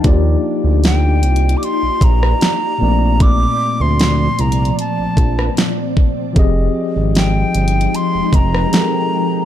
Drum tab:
HH |x-----------x-----x-x-x-x-----x-----x-----------|x-----------x-----x-x-x-x-----x-----x-----------|x-----------x-----x-x-x-x-----x-----x-----------|
SD |------------o--------------------r--o-----------|------------o--------------------r--o-----------|------------o--------------------r--o-----------|
BD |o-----------------------------o-----------------|o-----------------------------o-----------o-----|o-----------------------------o-----------------|